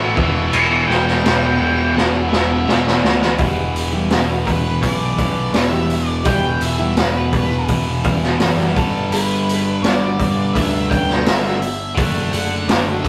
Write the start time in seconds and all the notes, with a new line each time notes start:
Already playing: A1 A2 E3 A3 E5
0.17 E1 E2 B2 E3, kick
0.50 E1 E2 B2 E3 E5, crash
0.87 E1 G5, snare
1.07 snare
1.24 E1 E2 B2 E3, snare, crash
1.59 E1 E2 B2 E3
1.95 E1 E2 B2 E3 F#5, snare
2.29 E1 E5, snare
2.67 E1 E2 B2 E3, snare
2.87 snare
3.02 D2 E2 B2 E3, snare
3.22 snare
3.37 E1 E2 B2 E3 G3 E4 G4, kick, open hi-hat
3.76 open hi-hat
3.92 E3 G3 E4 G4
4.10 E1, snare, open hi-hat
4.28 muted steel-string acoustic guitar stroke
4.45 E1 E3 G3 E4 G4 B4, kick, open hi-hat
4.64 muted steel-string acoustic guitar stroke
4.82 B1 D5, kick, open hi-hat
5.16 E2 B2 E3 G3 E4 G4, kick, open hi-hat
5.35 muted steel-string acoustic guitar stroke
5.52 E1 E2 B2 E3 E5, snare, open hi-hat
5.71 E3 G3 E4 G4
5.90 open hi-hat
6.09 D5
6.24 E1 E2 B2 E3 G3 E4 G4 G5, kick, open hi-hat
6.28 E3
6.60 E1 E5, open hi-hat
6.78 E3 G3 E4 G4
6.97 E1 B4, snare, open hi-hat
7.14 muted steel-string acoustic guitar stroke
7.32 E1 E3 G3 E4 G4, kick, open hi-hat
7.51 muted steel-string acoustic guitar stroke
7.68 E1, kick, open hi-hat
8.03 E1 E2 B2 E3 G3 E4 G4, kick, open hi-hat
8.22 muted steel-string acoustic guitar stroke, snare
8.39 F#1 E2 B2, snare, open hi-hat
8.43 E3
8.58 E3 G3 E4 G4, snare
8.75 G1 G2 D3 A4, kick, open hi-hat
8.79 G3
9.11 G1 B4, open hi-hat
9.49 open hi-hat
9.81 G1 D5, snare, open hi-hat
10.19 G1, kick, open hi-hat
10.53 D2 G2 D3 E5, kick, open hi-hat
10.59 G3
10.89 G2 D3 G3 G5, kick, open hi-hat
11.09 snare
11.26 G1 E5, snare, open hi-hat
11.45 snare
11.62 open hi-hat
11.95 F#1 D3 A3 D4, kick, open hi-hat
12.32 F#1 F#5, open hi-hat
12.68 F#1 D5, snare, open hi-hat
13.03 F#1 E5, kick, open hi-hat